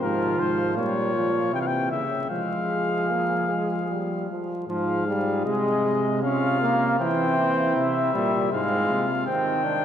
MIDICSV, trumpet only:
0, 0, Header, 1, 2, 480
1, 0, Start_track
1, 0, Key_signature, -4, "minor"
1, 0, Tempo, 760456
1, 8, Time_signature, 3, 2, 24, 8
1, 969, Tempo, 782269
1, 3849, Tempo, 758534
1, 6140, End_track
2, 0, Start_track
2, 0, Title_t, "Trumpet"
2, 0, Program_c, 0, 56
2, 11, Note_on_c, 0, 70, 80
2, 248, Note_on_c, 0, 72, 78
2, 258, Note_off_c, 0, 70, 0
2, 483, Note_off_c, 0, 72, 0
2, 487, Note_on_c, 0, 73, 74
2, 959, Note_off_c, 0, 73, 0
2, 971, Note_on_c, 0, 79, 79
2, 1013, Note_on_c, 0, 77, 72
2, 1023, Note_off_c, 0, 79, 0
2, 1051, Note_on_c, 0, 79, 85
2, 1061, Note_off_c, 0, 77, 0
2, 1194, Note_off_c, 0, 79, 0
2, 1198, Note_on_c, 0, 76, 74
2, 1432, Note_off_c, 0, 76, 0
2, 1436, Note_on_c, 0, 77, 64
2, 2629, Note_off_c, 0, 77, 0
2, 2902, Note_on_c, 0, 77, 74
2, 3352, Note_off_c, 0, 77, 0
2, 3373, Note_on_c, 0, 75, 62
2, 3838, Note_off_c, 0, 75, 0
2, 3845, Note_on_c, 0, 77, 79
2, 4322, Note_off_c, 0, 77, 0
2, 4331, Note_on_c, 0, 79, 69
2, 4806, Note_off_c, 0, 79, 0
2, 4815, Note_on_c, 0, 76, 73
2, 5288, Note_off_c, 0, 76, 0
2, 5300, Note_on_c, 0, 77, 82
2, 5765, Note_off_c, 0, 77, 0
2, 5772, Note_on_c, 0, 79, 88
2, 6140, Note_off_c, 0, 79, 0
2, 6140, End_track
0, 0, End_of_file